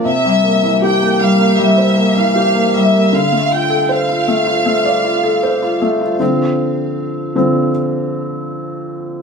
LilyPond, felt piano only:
\new Staff \with { instrumentName = "Felt piano" } { \time 4/4 \key d \minor \tempo 4 = 78 c16 g16 bes16 e16 g'16 bes16 g16 bes16 g16 c''16 bes16 e16 g'16 bes16 g16 bes16 | d16 a16 f'16 a'16 c''16 f'16 a16 f'16 a16 d''16 f'16 a'16 c''16 f'16 a16 f'16 | <d f c'>4. <d f c'>8 r2 | }